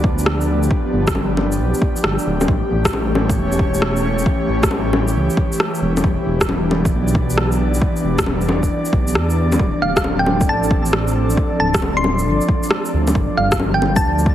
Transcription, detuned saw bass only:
0.00 0.70 D2 medium
0.93 1.61 G1 medium
1.60 1.73 B1 medium
2.04 2.18 G1 medium
2.26 2.47 D1 loud
2.48 2.62 A1 loud
2.71 3.39 A1 medium
3.37 4.25 E1 medium
4.48 5.17 A1 medium
5.15 5.29 C#2 medium
5.82 6.03 E1 medium
6.04 6.18 E1 loud
6.26 6.94 E1 medium
6.93 7.81 B1 medium
8.04 8.70 E1 medium
8.93 9.17 B1 medium
9.15 9.59 E2 medium
9.59 9.73 D1 medium
9.82 10.50 D1 medium
10.49 11.37 A1 medium
11.60 12.28 D1 medium
12.27 12.40 G1 medium
12.94 13.14 D2 medium
13.15 13.29 G1 loud
13.38 14.06 G1 medium
14.04 14.35 D2 medium

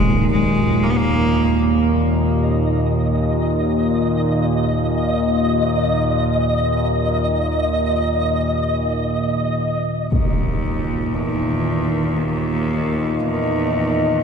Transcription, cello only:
0.00 0.30 G#3 loud
0.32 0.85 G#3 medium
0.83 0.91 A#3 medium
0.90 0.98 B3 medium
0.97 1.60 A#3 loud
10.12 11.14 D#2 medium
11.13 12.19 E2 medium
12.17 13.22 D#2 medium
13.20 14.23 E2 medium

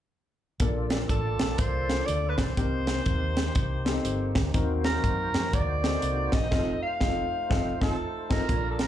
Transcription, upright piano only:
0.60 1.37 A#2 medium
0.60 1.22 A#3 medium
0.60 1.23 D4 medium
0.60 1.23 F4 medium
0.60 1.23 A4 medium
1.88 2.32 A#3 medium
1.88 2.33 D4 medium
1.88 2.33 F4 medium
1.88 2.33 A4 medium
2.57 3.33 C3 medium
2.57 3.19 C4 medium
2.57 3.20 D#4 medium
2.57 3.20 G4 medium
2.57 3.20 A#4 medium
3.85 4.30 C4 medium
3.85 3.91 D4 medium
3.85 4.30 G4 medium
3.85 4.31 A4 medium
3.92 4.33 D#4 medium
4.54 5.31 D#3 medium
4.54 5.16 C4 medium
4.54 5.16 D#4 medium
4.54 5.17 F#4 medium
4.54 5.17 A#4 medium
5.84 6.28 C4 medium
5.84 6.28 D#4 medium
5.84 6.28 F#4 medium
5.84 6.28 A4 medium
6.51 6.72 C4 loud
6.51 6.73 D#4 medium
6.51 6.73 F4 medium
6.59 6.77 A4 medium
7.01 7.22 C4 medium
7.01 7.23 D#4 medium
7.01 7.23 F4 medium
7.09 7.26 A4 medium
7.50 7.71 C4 medium
7.50 7.71 D#4 loud
7.50 7.71 F4 medium
7.50 7.71 A4 loud
7.81 7.94 C4 medium
7.81 7.94 D#4 medium
7.81 7.94 F4 loud
7.81 7.94 A4 medium
8.29 8.42 C4 medium
8.29 8.43 D#4 loud
8.29 8.43 F4 medium
8.29 8.43 A4 medium
8.48 8.87 A#2 medium
8.48 8.76 A#3 medium
8.48 8.76 D4 medium
8.48 8.76 F4 medium
8.48 8.77 A4 medium

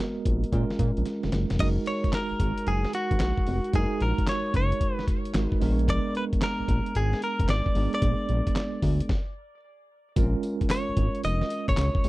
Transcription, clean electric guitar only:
1.60 1.67 D#5 loud
1.87 2.14 C#5 loud
2.15 2.69 A#4 medium
2.68 2.94 G#4 loud
2.95 3.75 F#4 medium
3.75 4.02 G#4 medium
4.02 4.29 A#4 medium
4.29 4.55 C#5 medium
4.57 5.05 C#5 medium
5.90 6.16 D5 loud
6.17 6.24 B4 loud
6.44 6.98 A#4 loud
6.96 7.21 G#4 loud
7.24 7.48 A#4 medium
7.50 7.93 D5 loud
7.95 9.60 D5 medium
10.71 11.21 C#5 loud
11.25 11.66 D#5 loud
11.69 12.09 C#5 loud

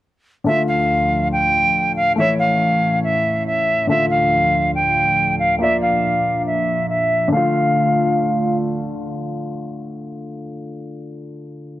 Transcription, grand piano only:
0.44 2.13 D3 medium
0.44 2.14 A3 medium
0.49 2.16 F4 medium
2.16 3.86 E3 medium
2.16 3.85 A3 medium
2.20 3.87 C#5 medium
3.87 5.56 D3 medium
3.87 5.57 A3 medium
3.91 5.58 F4 medium
5.59 7.28 A#3 medium
5.59 7.29 F4 medium
5.63 7.30 D5 medium
7.28 10.42 D3 medium
7.32 10.46 A3 medium
7.36 10.51 F4 medium

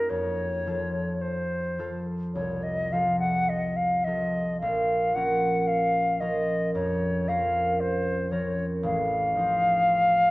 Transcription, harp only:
0.00 0.15 F#2 soft
0.00 0.15 A#3 soft
0.00 0.15 D#4 soft
0.00 0.15 A#4 soft
0.10 4.00 F2 soft
0.66 1.77 F3 soft
0.66 1.78 F4 soft
0.66 1.78 A4 soft
1.78 2.91 F3 soft
1.78 2.92 F4 soft
1.78 2.92 A4 soft
2.35 4.66 C2 soft
2.92 4.06 F3 soft
2.92 4.06 F4 soft
2.92 4.06 A4 soft
4.06 5.14 F3 soft
4.06 7.97 F4 soft
4.06 4.66 A4 soft
4.63 8.53 A#1 soft
5.16 6.20 F3 soft
5.16 6.20 C#4 soft
5.16 6.21 A#4 soft
6.21 7.27 F3 soft
6.21 7.28 C#4 soft
6.21 7.28 A#4 soft
6.75 8.88 F2 soft
7.28 8.30 F3 soft
7.28 8.31 C#4 soft
7.28 8.31 A#4 soft
8.31 9.34 F3 soft
8.31 8.88 C#4 soft
8.31 8.88 A#4 soft
8.83 10.31 A1 soft
9.35 10.31 F3 soft
9.35 10.31 D#4 soft
9.35 10.31 C5 soft

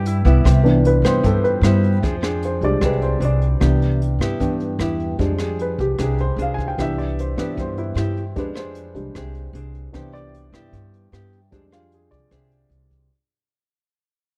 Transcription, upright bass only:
0.00 0.21 G2 medium
0.25 0.43 C2 medium
0.45 1.00 C2 medium
1.02 1.21 G2 medium
1.23 1.60 G2 medium
1.61 1.99 G2 medium
2.02 2.58 F2 medium
2.61 2.80 C2 medium
2.81 3.18 C2 medium
3.20 3.58 C2 medium
3.61 4.16 C2 medium
4.19 4.38 G2 medium
4.40 4.77 G2 medium
4.79 5.16 E2 medium
5.19 5.74 F2 medium
5.79 5.97 C2 medium
5.99 6.35 C2 medium
6.36 6.74 C2 medium
6.78 7.33 C2 medium
7.36 7.55 G2 medium
7.57 7.93 G2 medium
7.95 8.32 G2 medium
8.36 8.91 F2 medium
8.95 9.13 C2 medium
9.15 9.52 C2 medium
9.53 9.90 C2 medium
9.94 10.49 C2 medium
10.52 10.71 G2 medium
10.72 11.09 G2 medium
11.12 11.49 G2 medium
11.52 12.07 F2 medium
12.11 12.30 C2 medium
12.31 12.68 C2 medium
12.70 13.07 C2 medium

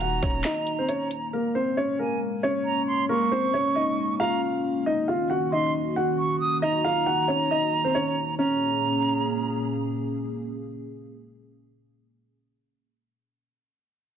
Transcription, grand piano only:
0.01 0.20 F#4 medium
0.01 0.20 F#5 medium
0.22 0.42 C#4 medium
0.22 0.42 C#5 medium
0.45 0.77 D#4 medium
0.45 0.77 D#5 medium
0.79 0.88 C4 medium
0.79 0.88 C5 medium
0.89 1.08 C#4 medium
0.89 1.08 C#5 medium
1.33 1.53 A#3 medium
1.33 1.52 A#4 medium
1.55 1.75 C4 medium
1.55 1.74 C5 medium
1.77 1.97 C#4 medium
1.77 1.96 C#5 medium
1.99 2.41 A#3 medium
1.99 2.41 A#4 medium
2.43 3.06 C#4 medium
2.43 3.05 C#5 medium
3.09 3.29 A#3 medium
3.09 3.28 A#4 medium
3.32 3.51 C4 medium
3.32 3.51 C5 medium
3.54 3.73 C#4 medium
3.54 3.73 C#5 medium
3.75 4.17 D#4 medium
3.75 4.17 D#5 medium
4.20 4.82 F4 medium
4.20 4.82 F5 medium
4.86 5.06 D#4 medium
4.86 5.05 D#5 medium
5.08 5.28 F4 medium
5.08 5.27 F5 medium
5.30 5.49 F#4 medium
5.30 5.49 F#5 medium
5.52 5.94 D#4 medium
5.52 5.94 D#5 medium
5.96 6.59 F#4 medium
5.96 6.58 F#5 medium
6.62 6.82 D#4 medium
6.62 6.81 D#5 loud
6.84 7.04 F4 medium
6.84 7.04 F5 medium
7.06 7.26 F#4 medium
7.06 7.26 F#5 medium
7.28 7.48 C#4 medium
7.28 7.47 C#5 medium
7.51 7.83 D#4 medium
7.51 7.82 D#5 medium
7.84 7.94 C4 medium
7.84 7.93 C5 medium
7.95 8.14 C#4 medium
7.95 8.14 C#5 medium
8.39 9.67 C#4 medium

